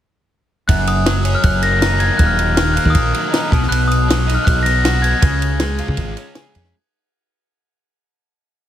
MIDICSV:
0, 0, Header, 1, 5, 480
1, 0, Start_track
1, 0, Tempo, 378072
1, 875, Time_signature, 4, 2, 24, 8
1, 11030, End_track
2, 0, Start_track
2, 0, Title_t, "Glockenspiel"
2, 0, Program_c, 0, 9
2, 858, Note_on_c, 0, 90, 85
2, 1112, Note_off_c, 0, 90, 0
2, 1116, Note_on_c, 0, 87, 88
2, 1711, Note_on_c, 0, 89, 89
2, 1729, Note_off_c, 0, 87, 0
2, 1827, Note_on_c, 0, 90, 101
2, 1833, Note_off_c, 0, 89, 0
2, 2067, Note_on_c, 0, 94, 95
2, 2074, Note_off_c, 0, 90, 0
2, 2537, Note_on_c, 0, 92, 95
2, 2560, Note_off_c, 0, 94, 0
2, 2762, Note_on_c, 0, 90, 82
2, 2788, Note_off_c, 0, 92, 0
2, 2874, Note_on_c, 0, 89, 89
2, 2897, Note_off_c, 0, 90, 0
2, 3222, Note_off_c, 0, 89, 0
2, 3237, Note_on_c, 0, 89, 98
2, 3469, Note_on_c, 0, 90, 86
2, 3498, Note_off_c, 0, 89, 0
2, 3684, Note_on_c, 0, 87, 99
2, 3734, Note_off_c, 0, 90, 0
2, 4382, Note_off_c, 0, 87, 0
2, 4684, Note_on_c, 0, 90, 91
2, 4921, Note_on_c, 0, 87, 84
2, 4942, Note_off_c, 0, 90, 0
2, 5518, Note_on_c, 0, 89, 81
2, 5552, Note_off_c, 0, 87, 0
2, 5645, Note_on_c, 0, 90, 89
2, 5656, Note_off_c, 0, 89, 0
2, 5873, Note_on_c, 0, 94, 97
2, 5904, Note_off_c, 0, 90, 0
2, 6375, Note_on_c, 0, 92, 88
2, 6386, Note_off_c, 0, 94, 0
2, 8017, Note_off_c, 0, 92, 0
2, 11030, End_track
3, 0, Start_track
3, 0, Title_t, "Overdriven electric guitar"
3, 0, Program_c, 1, 29
3, 869, Note_on_c, 1, 42, 72
3, 1341, Note_on_c, 1, 54, 68
3, 1586, Note_on_c, 1, 61, 65
3, 1811, Note_off_c, 1, 54, 0
3, 1816, Note_on_c, 1, 54, 70
3, 2065, Note_off_c, 1, 42, 0
3, 2068, Note_on_c, 1, 58, 73
3, 2315, Note_on_c, 1, 63, 74
3, 2529, Note_off_c, 1, 58, 0
3, 2544, Note_on_c, 1, 58, 59
3, 2783, Note_off_c, 1, 61, 0
3, 2784, Note_off_c, 1, 58, 0
3, 2794, Note_on_c, 1, 39, 84
3, 3254, Note_off_c, 1, 54, 0
3, 3259, Note_on_c, 1, 51, 72
3, 3502, Note_on_c, 1, 58, 70
3, 3723, Note_off_c, 1, 51, 0
3, 3738, Note_on_c, 1, 51, 70
3, 3980, Note_on_c, 1, 54, 73
3, 3987, Note_off_c, 1, 39, 0
3, 4206, Note_off_c, 1, 63, 0
3, 4212, Note_on_c, 1, 63, 80
3, 4451, Note_on_c, 1, 47, 67
3, 4457, Note_off_c, 1, 63, 0
3, 4460, Note_off_c, 1, 51, 0
3, 4462, Note_off_c, 1, 54, 0
3, 4462, Note_off_c, 1, 58, 0
3, 4673, Note_off_c, 1, 47, 0
3, 4688, Note_on_c, 1, 47, 75
3, 5182, Note_on_c, 1, 54, 71
3, 5425, Note_on_c, 1, 63, 67
3, 5650, Note_off_c, 1, 54, 0
3, 5665, Note_on_c, 1, 54, 71
3, 5898, Note_off_c, 1, 47, 0
3, 5913, Note_on_c, 1, 59, 78
3, 6150, Note_on_c, 1, 66, 82
3, 6360, Note_off_c, 1, 59, 0
3, 6375, Note_on_c, 1, 59, 65
3, 6618, Note_on_c, 1, 49, 76
3, 6622, Note_off_c, 1, 59, 0
3, 6628, Note_off_c, 1, 54, 0
3, 6629, Note_off_c, 1, 63, 0
3, 6630, Note_off_c, 1, 66, 0
3, 7102, Note_on_c, 1, 56, 82
3, 7357, Note_on_c, 1, 65, 69
3, 7582, Note_off_c, 1, 56, 0
3, 7598, Note_on_c, 1, 56, 72
3, 7828, Note_off_c, 1, 49, 0
3, 7831, Note_on_c, 1, 61, 76
3, 8072, Note_on_c, 1, 68, 83
3, 8292, Note_off_c, 1, 61, 0
3, 8307, Note_on_c, 1, 61, 65
3, 8552, Note_off_c, 1, 61, 0
3, 8554, Note_off_c, 1, 68, 0
3, 8558, Note_off_c, 1, 56, 0
3, 8558, Note_off_c, 1, 65, 0
3, 11030, End_track
4, 0, Start_track
4, 0, Title_t, "Fingered electric bass"
4, 0, Program_c, 2, 33
4, 871, Note_on_c, 2, 30, 86
4, 1703, Note_off_c, 2, 30, 0
4, 1822, Note_on_c, 2, 30, 94
4, 2657, Note_off_c, 2, 30, 0
4, 2783, Note_on_c, 2, 27, 96
4, 3513, Note_off_c, 2, 27, 0
4, 3627, Note_on_c, 2, 39, 103
4, 3729, Note_off_c, 2, 39, 0
4, 3747, Note_on_c, 2, 34, 92
4, 3954, Note_off_c, 2, 34, 0
4, 4470, Note_on_c, 2, 35, 93
4, 4676, Note_off_c, 2, 35, 0
4, 4698, Note_on_c, 2, 35, 90
4, 5537, Note_off_c, 2, 35, 0
4, 5674, Note_on_c, 2, 35, 94
4, 6508, Note_off_c, 2, 35, 0
4, 6629, Note_on_c, 2, 37, 85
4, 7362, Note_off_c, 2, 37, 0
4, 7471, Note_on_c, 2, 49, 97
4, 7576, Note_off_c, 2, 49, 0
4, 7588, Note_on_c, 2, 32, 103
4, 7799, Note_off_c, 2, 32, 0
4, 8321, Note_on_c, 2, 41, 89
4, 8528, Note_off_c, 2, 41, 0
4, 11030, End_track
5, 0, Start_track
5, 0, Title_t, "Drums"
5, 871, Note_on_c, 9, 51, 88
5, 873, Note_on_c, 9, 36, 97
5, 998, Note_off_c, 9, 51, 0
5, 1000, Note_off_c, 9, 36, 0
5, 1108, Note_on_c, 9, 51, 66
5, 1235, Note_off_c, 9, 51, 0
5, 1348, Note_on_c, 9, 51, 97
5, 1349, Note_on_c, 9, 38, 107
5, 1475, Note_off_c, 9, 51, 0
5, 1476, Note_off_c, 9, 38, 0
5, 1584, Note_on_c, 9, 51, 71
5, 1711, Note_off_c, 9, 51, 0
5, 1821, Note_on_c, 9, 51, 81
5, 1826, Note_on_c, 9, 36, 92
5, 1948, Note_off_c, 9, 51, 0
5, 1953, Note_off_c, 9, 36, 0
5, 2062, Note_on_c, 9, 51, 64
5, 2189, Note_off_c, 9, 51, 0
5, 2310, Note_on_c, 9, 51, 89
5, 2311, Note_on_c, 9, 38, 99
5, 2437, Note_off_c, 9, 51, 0
5, 2438, Note_off_c, 9, 38, 0
5, 2538, Note_on_c, 9, 51, 58
5, 2665, Note_off_c, 9, 51, 0
5, 2780, Note_on_c, 9, 51, 86
5, 2783, Note_on_c, 9, 36, 101
5, 2906, Note_off_c, 9, 51, 0
5, 2910, Note_off_c, 9, 36, 0
5, 3030, Note_on_c, 9, 51, 64
5, 3157, Note_off_c, 9, 51, 0
5, 3263, Note_on_c, 9, 51, 93
5, 3264, Note_on_c, 9, 38, 111
5, 3390, Note_off_c, 9, 51, 0
5, 3391, Note_off_c, 9, 38, 0
5, 3514, Note_on_c, 9, 51, 67
5, 3624, Note_on_c, 9, 36, 80
5, 3641, Note_off_c, 9, 51, 0
5, 3740, Note_on_c, 9, 51, 82
5, 3745, Note_off_c, 9, 36, 0
5, 3745, Note_on_c, 9, 36, 94
5, 3867, Note_off_c, 9, 51, 0
5, 3872, Note_off_c, 9, 36, 0
5, 3991, Note_on_c, 9, 51, 66
5, 4118, Note_off_c, 9, 51, 0
5, 4234, Note_on_c, 9, 51, 73
5, 4235, Note_on_c, 9, 38, 104
5, 4361, Note_off_c, 9, 51, 0
5, 4362, Note_off_c, 9, 38, 0
5, 4470, Note_on_c, 9, 36, 97
5, 4481, Note_on_c, 9, 51, 57
5, 4597, Note_off_c, 9, 36, 0
5, 4607, Note_on_c, 9, 38, 31
5, 4608, Note_off_c, 9, 51, 0
5, 4724, Note_on_c, 9, 51, 85
5, 4734, Note_off_c, 9, 38, 0
5, 4851, Note_off_c, 9, 51, 0
5, 4969, Note_on_c, 9, 51, 61
5, 5096, Note_off_c, 9, 51, 0
5, 5209, Note_on_c, 9, 51, 95
5, 5210, Note_on_c, 9, 38, 115
5, 5336, Note_off_c, 9, 51, 0
5, 5337, Note_off_c, 9, 38, 0
5, 5451, Note_on_c, 9, 51, 72
5, 5578, Note_off_c, 9, 51, 0
5, 5675, Note_on_c, 9, 36, 110
5, 5680, Note_on_c, 9, 51, 77
5, 5802, Note_off_c, 9, 36, 0
5, 5807, Note_off_c, 9, 51, 0
5, 5915, Note_on_c, 9, 51, 71
5, 6042, Note_off_c, 9, 51, 0
5, 6155, Note_on_c, 9, 51, 91
5, 6156, Note_on_c, 9, 38, 108
5, 6282, Note_off_c, 9, 51, 0
5, 6283, Note_off_c, 9, 38, 0
5, 6396, Note_on_c, 9, 51, 65
5, 6523, Note_off_c, 9, 51, 0
5, 6631, Note_on_c, 9, 51, 101
5, 6632, Note_on_c, 9, 36, 109
5, 6758, Note_off_c, 9, 51, 0
5, 6759, Note_off_c, 9, 36, 0
5, 6880, Note_on_c, 9, 51, 69
5, 7007, Note_off_c, 9, 51, 0
5, 7105, Note_on_c, 9, 51, 89
5, 7106, Note_on_c, 9, 38, 116
5, 7232, Note_off_c, 9, 51, 0
5, 7233, Note_off_c, 9, 38, 0
5, 7343, Note_on_c, 9, 51, 60
5, 7470, Note_off_c, 9, 51, 0
5, 7470, Note_on_c, 9, 36, 74
5, 7579, Note_on_c, 9, 51, 79
5, 7590, Note_off_c, 9, 36, 0
5, 7590, Note_on_c, 9, 36, 94
5, 7706, Note_off_c, 9, 51, 0
5, 7716, Note_off_c, 9, 36, 0
5, 7830, Note_on_c, 9, 51, 62
5, 7957, Note_off_c, 9, 51, 0
5, 8064, Note_on_c, 9, 51, 82
5, 8065, Note_on_c, 9, 38, 98
5, 8191, Note_off_c, 9, 51, 0
5, 8192, Note_off_c, 9, 38, 0
5, 8313, Note_on_c, 9, 51, 56
5, 8431, Note_on_c, 9, 38, 36
5, 8440, Note_off_c, 9, 51, 0
5, 8557, Note_off_c, 9, 38, 0
5, 11030, End_track
0, 0, End_of_file